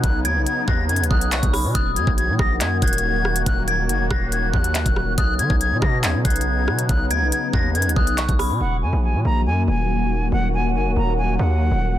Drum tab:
HH |x-----------x-----------x-----------------------x---x---x---------x-----x-----x-----o-----------|x-----------x-----------x-----------------------x-----------x--x--x--x--------------------x-----|x-----------x-----------x-----------------------x-----------------x-----x-----x-----------------|x-----------x-----------x-----------------------x-----------x--x--x--x--------------------x-----|
CP |------------------------------------------------------------------------x-----------------------|------------------------------------------------x-----------------------------------------------|------------------------------------------------------------------------x-----------------------|------------------------------------------------x-----------------------------------------------|
SD |------------------------------------------------------------------------------------r-----------|------------------------------------r-----------------------------------------------r-----------|------------------------------------r-----------------------------------------------r-----------|------------------------------------r-----------------------------------------------r-----------|
BD |o-----------------------------------o-----------------------o-----------------o-----------------|o-----------------o-----------------o-----------------------o-----------------------------------|o-----------------------------------o-----------------------o-----------------o-----------------|o-----------------o-----------------o-----------------------o-----------------------------------|

HH |x-----------x-----------x-----------------------x---x---x---------x-----x-----x-----o-----------|------------------------------------------------------------------------------------------------|------------------------------------------------------------------------------------------------|
CP |------------------------------------------------------------------------x-----------------------|------------------------------------------------------------------------------------------------|------------------------------------------------------------------------------------------------|
SD |------------------------------------------------------------------------------------r-----------|------------------------------------------------------------------------------------------------|------------------------------------------------------------------------------------------------|
BD |o-----------------------------------o-----------------------o-----------------o-----------------|------------------------------------------------------------------------------------------------|------------------------------------------------------------------------------------------------|